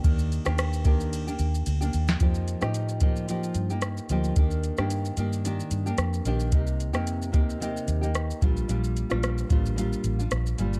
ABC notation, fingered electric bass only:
X:1
M:4/4
L:1/16
Q:"Swing 16ths" 1/4=111
K:Eblyd
V:1 name="Fingered electric bass" clef=bass
E,,3 E,,6- E,, E,,2 D,,2 E,,2 | F,,3 A,,6- A,, G,,4 D,,2 | E,,3 G,,3 G,,4 G,,2 F,,2 B,,,2 | C,,3 F,,3 E,,4 E,,4 B,,,2 |
B,,,3 B,,,3 A,,,4 A,,,2 B,,,2 G,,,2 |]